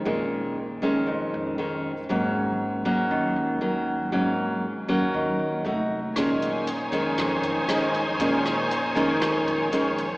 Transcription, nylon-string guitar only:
\new Staff \with { instrumentName = "Nylon-string guitar" } { \clef bass \time 4/4 \key bes \minor \tempo 4 = 118 << { <ees aes des'>4 r8 <ees aes des'>4. <ees aes des'>8 r8 | <ges bes des'>4. <ges bes des'>4. <ges bes des'>4 | <ges bes des'>4 r8 <ges bes des'>4. <a ees' ges'>8 r8 | <ees aes des'>4 r8 <ees aes des'>4. <ees aes des'>4 |
<ees aes des'>4 r8 <ees aes des'>4. <ees aes des'>8 r8 | } \\ { bes,2 f,2 | aes,2 ees2 | aes,2 ees4 r4 | bes,2 f,2 |
bes,2 f,2 | } >> }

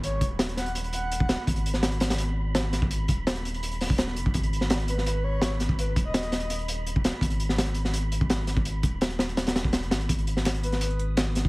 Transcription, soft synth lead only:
\new Staff \with { instrumentName = "Soft synth lead" } { \time 4/4 \key gis \minor \tempo 4 = 167 cis''8 r4 fis''16 fis''16 r8 fis''4. | r1 | r1 | r4. b'8 b'8 cis''8. r8. |
b'16 b'16 r16 dis''4. r4. r16 | r1 | r1 | r4. b'8 b'8 r4. | }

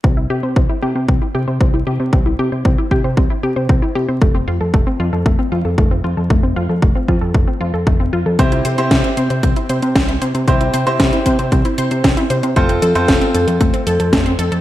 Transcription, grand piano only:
\new Staff \with { instrumentName = "Grand piano" } { \time 4/4 \key c \major \tempo 4 = 115 r1 | r1 | r1 | r1 |
<c' e' g' c''>8. <c' e' g' c''>2.~ <c' e' g' c''>16 | <c' e' g' c''>8. <c' e' g' c''>2.~ <c' e' g' c''>16 | <c' f' a' c''>8. <c' f' a' c''>2.~ <c' f' a' c''>16 | }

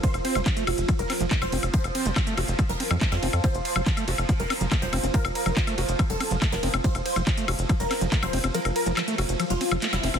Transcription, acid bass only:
\new Staff \with { instrumentName = "Acid bass" } { \clef bass \time 4/4 \key f \major \tempo 4 = 141 f16 r16 c'16 f16 f16 a16 ges'16 r16 f16 ges16 c'16 f16 a16 ges16 c'16 r16 | f16 r16 c'16 f16 f16 a16 ges'16 r16 f16 ges16 c'16 f16 a16 ges16 c'16 r16 | f16 r8 f16 f16 a16 ges'16 r16 f16 ges16 c'16 f16 a16 ges16 c'16 c'16 | f16 r8 f16 f16 a16 ges'16 r16 f16 ges16 c'16 f16 a16 ges16 c'16 c'16 |
f16 r8 f16 f16 a16 ges'16 r16 f16 ges16 c'16 f16 a16 ges16 c'16 c'16 | f16 r8 f16 f16 a16 ges'16 r16 f16 ges16 c'16 f16 a16 ges16 c'16 c'16 | }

